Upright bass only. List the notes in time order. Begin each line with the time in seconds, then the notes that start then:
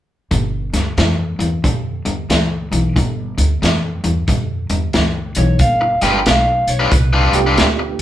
0.31 G1
0.73 D2
0.97 F2
1.39 E2
1.64 F2
2.05 E2
2.29 D2
2.71 B1
2.96 G1
3.38 D2
3.62 F2
4.04 E2
4.28 F2
4.70 E2
4.94 D2
5.36 B1
5.59 G1
6.02 G1
6.26 B1
6.67 B1
6.91 C2
7.33 C2
7.57 D2